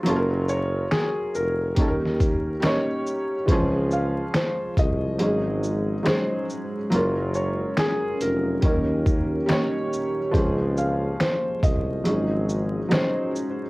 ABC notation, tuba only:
X:1
M:4/4
L:1/16
Q:"Swing 16ths" 1/4=70
K:Db
V:1 name="Tuba" clef=bass
G,,,4 z F,,, F,,,2 E,,4 z4 | D,,4 z C,, C,,2 A,,,4 z4 | G,,,4 z F,,, F,,,2 E,,4 z4 | D,,4 z C,, C,,2 A,,,4 z4 |]